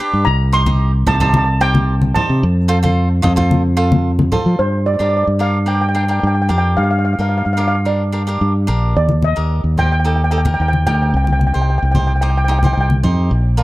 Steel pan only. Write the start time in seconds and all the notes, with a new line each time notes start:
Already playing: G5
0.25 A#5
0.53 C6
1.07 A5
1.15 A5
1.21 A5
1.29 A5
1.37 A5
1.44 A5
1.61 G5
2.15 A5
4.59 C5
4.86 D5
4.94 D5
5.01 D5
5.09 D5
5.17 D5
5.24 D5
5.41 F5
5.68 G5
5.75 G5
5.81 G5
5.89 G5
5.96 G5
6.04 G5
6.11 G5
6.20 G5
6.27 G5
6.35 G5
6.42 G5
6.49 G5
6.58 G5
6.77 F5
6.83 F5
6.91 F5
6.99 F5
7.05 F5
7.13 F5
7.21 F5
7.29 F5
7.38 F5
7.45 F5
7.53 F5
7.60 F5
7.68 F5
7.86 D5
8.97 D5
9.24 D#5
9.79 G5
9.86 G5
9.92 G5
10.00 G5
10.07 G5
10.16 G5
10.24 G5
10.31 G5
10.38 G5
10.47 G5
10.54 G5
10.62 G5
10.68 G5
10.87 G5
10.95 G5
11.02 G5
11.10 G5
11.17 G5
11.24 G5
11.33 G5
11.39 G5
11.47 G5
11.54 G5
11.62 G5
11.70 G5
11.78 G5
11.85 G5
11.91 G5
12.00 G5
12.07 G5
12.16 G5
12.21 G5
12.30 G5
12.38 G5
12.45 G5
12.52 G5
12.59 G5
12.66 G5
12.73 G5
12.81 G5